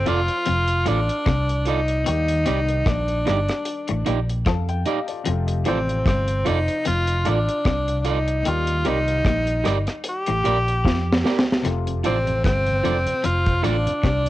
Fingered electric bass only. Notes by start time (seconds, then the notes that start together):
0.08 F1
0.49 F1
0.89 A1
1.27 C2
2.08 D#2
2.48 C2
2.87 A#1
3.29 G1
3.91 A1
4.08 A#1
4.47 F2
5.28 F1
5.67 A1
6.06 G1
6.47 F1
6.87 F1
7.27 A1
7.66 C2
8.47 D#2
8.87 C2
9.26 A#1
9.66 G1
10.29 A1
10.46 A#1
10.86 F2
11.66 F1
12.06 A1
12.45 G1
12.85 F1
13.25 F1
13.65 A1
14.04 C2